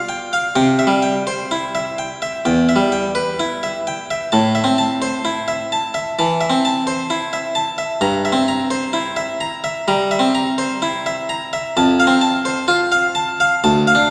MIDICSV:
0, 0, Header, 1, 2, 480
1, 0, Start_track
1, 0, Tempo, 943396
1, 286, Time_signature, 4, 2, 24, 8
1, 2204, Tempo, 925926
1, 6524, Tempo, 950872
1, 7249, End_track
2, 0, Start_track
2, 0, Title_t, "Harpsichord"
2, 0, Program_c, 0, 6
2, 0, Note_on_c, 0, 77, 41
2, 44, Note_on_c, 0, 79, 44
2, 51, Note_off_c, 0, 77, 0
2, 168, Note_on_c, 0, 77, 42
2, 172, Note_off_c, 0, 79, 0
2, 283, Note_on_c, 0, 48, 49
2, 283, Note_on_c, 0, 79, 60
2, 287, Note_off_c, 0, 77, 0
2, 402, Note_on_c, 0, 76, 47
2, 410, Note_off_c, 0, 79, 0
2, 440, Note_off_c, 0, 48, 0
2, 443, Note_on_c, 0, 55, 42
2, 521, Note_on_c, 0, 79, 40
2, 530, Note_off_c, 0, 76, 0
2, 614, Note_off_c, 0, 55, 0
2, 646, Note_on_c, 0, 72, 44
2, 651, Note_off_c, 0, 79, 0
2, 770, Note_on_c, 0, 64, 44
2, 774, Note_off_c, 0, 72, 0
2, 889, Note_on_c, 0, 76, 46
2, 896, Note_off_c, 0, 64, 0
2, 1010, Note_on_c, 0, 79, 42
2, 1016, Note_off_c, 0, 76, 0
2, 1130, Note_on_c, 0, 76, 50
2, 1136, Note_off_c, 0, 79, 0
2, 1248, Note_on_c, 0, 40, 46
2, 1249, Note_on_c, 0, 79, 56
2, 1251, Note_off_c, 0, 76, 0
2, 1368, Note_on_c, 0, 76, 42
2, 1376, Note_off_c, 0, 79, 0
2, 1403, Note_on_c, 0, 55, 37
2, 1405, Note_off_c, 0, 40, 0
2, 1487, Note_on_c, 0, 79, 44
2, 1495, Note_off_c, 0, 76, 0
2, 1574, Note_off_c, 0, 55, 0
2, 1603, Note_on_c, 0, 71, 40
2, 1614, Note_off_c, 0, 79, 0
2, 1727, Note_on_c, 0, 64, 46
2, 1732, Note_off_c, 0, 71, 0
2, 1848, Note_on_c, 0, 76, 42
2, 1854, Note_off_c, 0, 64, 0
2, 1970, Note_on_c, 0, 79, 51
2, 1974, Note_off_c, 0, 76, 0
2, 2089, Note_on_c, 0, 76, 46
2, 2094, Note_off_c, 0, 79, 0
2, 2199, Note_on_c, 0, 81, 54
2, 2202, Note_on_c, 0, 45, 48
2, 2206, Note_off_c, 0, 76, 0
2, 2317, Note_on_c, 0, 76, 44
2, 2327, Note_off_c, 0, 81, 0
2, 2358, Note_off_c, 0, 45, 0
2, 2364, Note_on_c, 0, 60, 44
2, 2438, Note_on_c, 0, 81, 45
2, 2445, Note_off_c, 0, 76, 0
2, 2529, Note_off_c, 0, 60, 0
2, 2559, Note_on_c, 0, 72, 49
2, 2565, Note_off_c, 0, 81, 0
2, 2679, Note_on_c, 0, 64, 50
2, 2686, Note_off_c, 0, 72, 0
2, 2799, Note_on_c, 0, 76, 50
2, 2807, Note_off_c, 0, 64, 0
2, 2925, Note_on_c, 0, 81, 50
2, 2928, Note_off_c, 0, 76, 0
2, 3039, Note_on_c, 0, 76, 54
2, 3052, Note_off_c, 0, 81, 0
2, 3166, Note_on_c, 0, 81, 48
2, 3167, Note_on_c, 0, 52, 44
2, 3169, Note_off_c, 0, 76, 0
2, 3280, Note_on_c, 0, 76, 46
2, 3292, Note_off_c, 0, 81, 0
2, 3326, Note_on_c, 0, 60, 47
2, 3335, Note_off_c, 0, 52, 0
2, 3406, Note_on_c, 0, 81, 47
2, 3409, Note_off_c, 0, 76, 0
2, 3494, Note_off_c, 0, 60, 0
2, 3520, Note_on_c, 0, 72, 45
2, 3531, Note_off_c, 0, 81, 0
2, 3640, Note_on_c, 0, 64, 43
2, 3648, Note_off_c, 0, 72, 0
2, 3759, Note_on_c, 0, 76, 47
2, 3768, Note_off_c, 0, 64, 0
2, 3873, Note_on_c, 0, 81, 53
2, 3888, Note_off_c, 0, 76, 0
2, 3992, Note_on_c, 0, 76, 46
2, 4005, Note_off_c, 0, 81, 0
2, 4111, Note_on_c, 0, 43, 56
2, 4113, Note_on_c, 0, 82, 64
2, 4119, Note_off_c, 0, 76, 0
2, 4235, Note_on_c, 0, 76, 50
2, 4245, Note_off_c, 0, 82, 0
2, 4273, Note_off_c, 0, 43, 0
2, 4274, Note_on_c, 0, 60, 43
2, 4355, Note_on_c, 0, 82, 52
2, 4365, Note_off_c, 0, 76, 0
2, 4446, Note_off_c, 0, 60, 0
2, 4471, Note_on_c, 0, 72, 53
2, 4485, Note_off_c, 0, 82, 0
2, 4589, Note_on_c, 0, 64, 52
2, 4603, Note_off_c, 0, 72, 0
2, 4709, Note_on_c, 0, 76, 52
2, 4722, Note_off_c, 0, 64, 0
2, 4834, Note_on_c, 0, 82, 54
2, 4842, Note_off_c, 0, 76, 0
2, 4955, Note_on_c, 0, 76, 62
2, 4965, Note_off_c, 0, 82, 0
2, 5079, Note_on_c, 0, 55, 49
2, 5080, Note_on_c, 0, 82, 50
2, 5086, Note_off_c, 0, 76, 0
2, 5200, Note_on_c, 0, 76, 53
2, 5208, Note_off_c, 0, 82, 0
2, 5243, Note_on_c, 0, 60, 49
2, 5250, Note_off_c, 0, 55, 0
2, 5322, Note_on_c, 0, 82, 54
2, 5328, Note_off_c, 0, 76, 0
2, 5412, Note_off_c, 0, 60, 0
2, 5444, Note_on_c, 0, 72, 50
2, 5450, Note_off_c, 0, 82, 0
2, 5568, Note_on_c, 0, 64, 59
2, 5571, Note_off_c, 0, 72, 0
2, 5693, Note_on_c, 0, 76, 51
2, 5694, Note_off_c, 0, 64, 0
2, 5813, Note_on_c, 0, 82, 63
2, 5817, Note_off_c, 0, 76, 0
2, 5936, Note_on_c, 0, 76, 49
2, 5937, Note_off_c, 0, 82, 0
2, 6052, Note_off_c, 0, 76, 0
2, 6059, Note_on_c, 0, 41, 61
2, 6059, Note_on_c, 0, 81, 80
2, 6177, Note_on_c, 0, 77, 52
2, 6180, Note_off_c, 0, 81, 0
2, 6209, Note_off_c, 0, 41, 0
2, 6216, Note_on_c, 0, 60, 54
2, 6290, Note_on_c, 0, 81, 53
2, 6298, Note_off_c, 0, 77, 0
2, 6380, Note_off_c, 0, 60, 0
2, 6414, Note_on_c, 0, 72, 57
2, 6415, Note_off_c, 0, 81, 0
2, 6531, Note_on_c, 0, 65, 64
2, 6537, Note_off_c, 0, 72, 0
2, 6651, Note_on_c, 0, 77, 60
2, 6654, Note_off_c, 0, 65, 0
2, 6769, Note_on_c, 0, 81, 58
2, 6774, Note_off_c, 0, 77, 0
2, 6894, Note_off_c, 0, 81, 0
2, 6896, Note_on_c, 0, 77, 66
2, 7012, Note_off_c, 0, 77, 0
2, 7015, Note_on_c, 0, 81, 74
2, 7016, Note_on_c, 0, 38, 63
2, 7134, Note_on_c, 0, 77, 58
2, 7138, Note_off_c, 0, 81, 0
2, 7168, Note_off_c, 0, 38, 0
2, 7173, Note_on_c, 0, 62, 47
2, 7249, Note_off_c, 0, 62, 0
2, 7249, Note_off_c, 0, 77, 0
2, 7249, End_track
0, 0, End_of_file